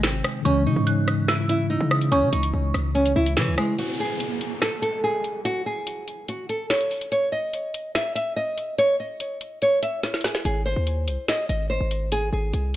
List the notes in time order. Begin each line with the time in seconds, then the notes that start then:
Already playing: G#1 C3 D#3 G#3 D#4
0.03 C4, finger snap, snare
0.24 cross-stick, closed hi-hat
0.42 C#2 C#3 E3 G#3 C#4 C#6, closed hi-hat
0.48 C#4
0.66 C#3 D#4
0.76 G#2
0.87 F#6, closed hi-hat
1.08 cross-stick, closed hi-hat
1.28 E4 E6, finger snap, snare, closed hi-hat
1.49 E4, closed hi-hat
1.70 D#4
1.81 C#3
1.91 D#6, cross-stick
2.01 closed hi-hat
2.12 C2 C#4 C#6, closed hi-hat
2.22 C#3
2.32 C#2 D#4, closed hi-hat
2.43 closed hi-hat
2.54 C#2
2.74 C#2, cross-stick, closed hi-hat
2.95 C#4, closed hi-hat
3.06 closed hi-hat
3.16 C#2 E4
3.26 closed hi-hat
3.37 C#3 E3, finger snap, snare
3.47 C#2
3.58 G#3 G#5, cross-stick, closed hi-hat
3.79 F#4, closed hi-hat, downlifter
4.00 G#4
4.20 closed hi-hat
4.41 closed hi-hat
4.62 A4, finger snap, snare, closed hi-hat
4.82 A4, closed hi-hat
5.04 G#4
5.24 closed hi-hat
5.45 F#4, closed hi-hat
5.66 G#4
5.87 closed hi-hat
6.08 closed hi-hat
6.28 F#4, closed hi-hat
6.49 A4, closed hi-hat
6.70 C#5, finger snap, snare, closed hi-hat
6.81 closed hi-hat
6.91 open hi-hat
7.01 closed hi-hat
7.12 C#5, closed hi-hat
7.32 D#5
7.53 closed hi-hat
7.74 closed hi-hat
7.95 E5, finger snap, snare, closed hi-hat
8.15 E5, closed hi-hat
8.36 D#5
8.58 closed hi-hat
8.78 C#5, closed hi-hat
9.00 D#5
9.20 closed hi-hat
9.41 closed hi-hat
9.62 C#5, closed hi-hat
9.83 E5, closed hi-hat
10.03 E4, snare, closed hi-hat
10.14 snare, closed hi-hat
10.21 G#4, snare, closed hi-hat
10.28 closed hi-hat
10.35 snare, closed hi-hat
10.45 G#1 G#4, closed hi-hat
10.66 C5
10.76 D#2
10.87 closed hi-hat
11.08 C2, closed hi-hat
11.28 D#5, finger snap, snare, closed hi-hat
11.49 G#1 D#5, closed hi-hat
11.70 C5
11.81 G#1
11.91 closed hi-hat
12.12 G#4, closed hi-hat
12.33 G#1 G#4
12.53 C2, closed hi-hat